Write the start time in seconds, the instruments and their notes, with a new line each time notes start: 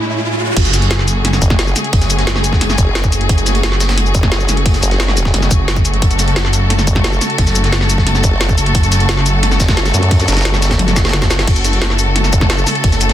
Already playing: string section A2 G#3 C#4 E4, riser
0.56 detuned saw bass F#1, string section C#3 A3 F#4 G#4, kick, closed hi-hat, crash
0.65 closed hi-hat, cabasa
0.74 snare, closed hi-hat, cabasa
0.82 closed hi-hat
0.91 snare, closed hi-hat
0.99 snare
1.08 closed hi-hat, cabasa
1.25 snare, closed hi-hat
1.33 snare, cabasa
1.42 wobble bass F#1, kick, closed hi-hat, cabasa
1.50 kick, snare
1.59 snare, closed hi-hat
1.67 cabasa
1.76 snare, closed hi-hat, cabasa
1.84 closed hi-hat
1.93 detuned saw bass F#1, kick, closed hi-hat, open hi-hat
2.01 snare, closed hi-hat, cabasa
2.10 closed hi-hat, cabasa
2.19 snare, closed hi-hat
2.27 snare, closed hi-hat
2.36 snare
2.44 closed hi-hat, cabasa
2.53 kick, snare
2.61 snare, closed hi-hat
2.70 snare, cabasa
2.78 wobble bass F#1, kick, closed hi-hat, cabasa
2.95 snare, closed hi-hat
3.04 kick, cabasa
3.12 detuned saw bass F#1, closed hi-hat, cabasa
3.21 closed hi-hat
3.29 detuned saw bass F#1, kick, closed hi-hat
3.38 closed hi-hat, cabasa
3.46 snare, closed hi-hat, cabasa
3.55 closed hi-hat
3.63 snare, closed hi-hat
3.72 snare
3.80 snare, closed hi-hat, cabasa
3.89 snare, closed hi-hat
3.97 snare, closed hi-hat
4.06 cabasa
4.15 wobble bass F#1, kick, closed hi-hat, cabasa
4.23 kick, snare
4.32 snare, closed hi-hat
4.40 cabasa
4.49 detuned saw bass F#1, snare, closed hi-hat, cabasa
4.57 closed hi-hat
4.66 kick, closed hi-hat, open hi-hat
4.74 snare, closed hi-hat, cabasa
4.83 wobble bass F#1, closed hi-hat, cabasa
4.91 snare, closed hi-hat
5.00 snare, closed hi-hat
5.08 snare
5.17 closed hi-hat, cabasa
5.25 kick, snare
5.34 wobble bass F#1, snare, closed hi-hat
5.42 snare, cabasa
5.51 detuned saw bass F#1, kick, closed hi-hat, cabasa
5.68 snare, closed hi-hat
5.76 kick, cabasa
5.85 closed hi-hat, cabasa
5.94 closed hi-hat
6.02 string section A4, kick, closed hi-hat
6.11 closed hi-hat, cabasa
6.19 snare, closed hi-hat, cabasa
6.28 closed hi-hat
6.36 snare, closed hi-hat
6.45 snare
6.53 closed hi-hat, cabasa
6.70 snare, closed hi-hat
6.79 snare, cabasa
6.87 wobble bass F#1, kick, closed hi-hat, cabasa
6.96 kick, snare
7.04 snare, closed hi-hat
7.13 cabasa
7.21 snare, closed hi-hat, cabasa
7.30 closed hi-hat
7.38 detuned saw bass F#1, kick, closed hi-hat, open hi-hat
7.47 snare, closed hi-hat, cabasa
7.55 closed hi-hat, cabasa
7.64 snare, closed hi-hat
7.72 snare, closed hi-hat
7.81 snare
7.90 closed hi-hat, cabasa
7.98 kick, snare
8.07 snare, closed hi-hat
8.15 snare, cabasa
8.24 wobble bass F#1, kick, closed hi-hat, cabasa
8.41 snare, closed hi-hat
8.49 kick, cabasa
8.58 detuned saw bass F#1, closed hi-hat, cabasa
8.66 closed hi-hat
8.75 detuned saw bass F#1, kick, closed hi-hat
8.83 closed hi-hat, cabasa
8.92 snare, closed hi-hat, cabasa
9.00 closed hi-hat
9.09 snare, closed hi-hat
9.17 snare
9.26 closed hi-hat, cabasa
9.43 snare, closed hi-hat
9.52 snare, cabasa
9.60 wobble bass F#1, kick, snare, closed hi-hat, cabasa
9.68 kick, snare, closed hi-hat
9.77 snare, closed hi-hat
9.86 snare, closed hi-hat, cabasa
9.94 wobble bass F#2, snare, closed hi-hat, cabasa
10.03 closed hi-hat
10.11 kick, closed hi-hat, open hi-hat
10.20 snare, closed hi-hat, cabasa
10.28 wobble bass F#1, snare, closed hi-hat, cabasa
10.32 snare, closed hi-hat
10.37 snare, closed hi-hat
10.41 snare, closed hi-hat
10.45 snare, closed hi-hat
10.54 snare, cabasa
10.62 snare, closed hi-hat, cabasa
10.71 kick, snare, closed hi-hat
10.79 snare, closed hi-hat, high tom
10.88 snare, closed hi-hat, high tom, cabasa
10.96 kick, snare, closed hi-hat, cabasa
11.05 snare, closed hi-hat
11.09 snare, closed hi-hat
11.13 snare, closed hi-hat, mid tom
11.22 kick, snare, closed hi-hat, cabasa
11.30 snare, closed hi-hat, cabasa
11.39 snare, closed hi-hat
11.47 detuned saw bass F#1, string section A4, kick, closed hi-hat, crash
11.56 closed hi-hat, cabasa
11.65 snare, closed hi-hat, cabasa
11.73 closed hi-hat
11.82 snare, closed hi-hat
11.90 snare
11.99 closed hi-hat, open hi-hat, cabasa
12.16 snare, closed hi-hat
12.24 snare, cabasa
12.33 wobble bass F#1, kick, closed hi-hat, cabasa
12.41 kick, snare
12.50 snare, closed hi-hat
12.58 cabasa
12.67 snare, closed hi-hat, open hi-hat, cabasa
12.75 closed hi-hat
12.84 detuned saw bass F#1, kick, closed hi-hat, open hi-hat
12.92 snare, closed hi-hat, cabasa
13.01 closed hi-hat, cabasa
13.09 snare, closed hi-hat